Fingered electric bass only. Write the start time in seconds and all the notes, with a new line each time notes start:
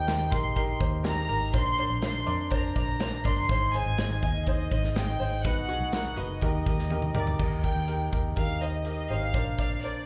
Already playing: D#2
0.32 A#1
0.81 D#2
1.29 G#1
1.54 A#1
1.90 A#1
2.27 F2
2.76 A#1
3.25 G1
3.49 G#1
3.86 G#1
4.23 D#2
4.71 G#1
5.20 G#1
5.45 B1
5.80 B1
6.17 F#1
6.42 D#2
6.67 D#2
7.15 D2
7.39 D#2
7.75 D#2
8.13 D#2
8.37 D#2
9.10 G#1
9.34 A#1